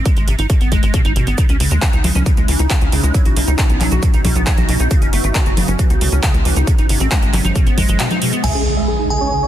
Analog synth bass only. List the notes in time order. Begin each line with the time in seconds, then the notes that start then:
0.17 G#1
0.28 G#1
0.39 G#1
0.61 G#1
0.72 G#1
0.83 G#1
1.05 G#1
1.16 G#1
1.27 G#1
1.49 C#2
1.60 C#2
1.71 D#2
1.93 C#2
2.04 C#2
2.15 C#2
2.37 C#2
2.48 C#2
2.59 C#2
2.82 C#2
2.93 C#2
3.03 C#2
3.26 B1
3.37 B1
3.48 C#2
3.69 B1
3.81 B1
3.92 B1
4.14 B1
4.25 B1
4.36 B1
4.58 B1
4.69 B1
4.80 B1
5.02 F#1
5.13 F#1
5.24 G#1
5.46 F#1
5.57 F#1
5.68 F#1
5.90 C#2
6.01 C#2
6.12 C#2
6.34 C#2
6.45 C#2
6.56 C#2
6.78 G#1
6.89 G#1
7.00 A1
7.22 G#1
7.33 G#1
7.44 G#1
7.66 G#1
7.78 G#1
7.89 G#1
8.44 C#2